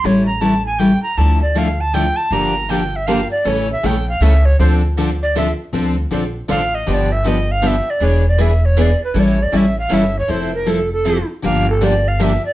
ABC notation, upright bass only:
X:1
M:3/4
L:1/8
Q:"Swing" 1/4=158
K:Dm
V:1 name="Upright bass" clef=bass
A,,,6 | D,,6 | G,,,6 | A,,,2 B,,,2 ^C,,2 |
D,,6 | D,,2 B,,,2 A,,,2 | G,,,6 | E,,,6 |
A,,,2 A,,,2 G,,,2 | F,,,6 | G,,,6 |]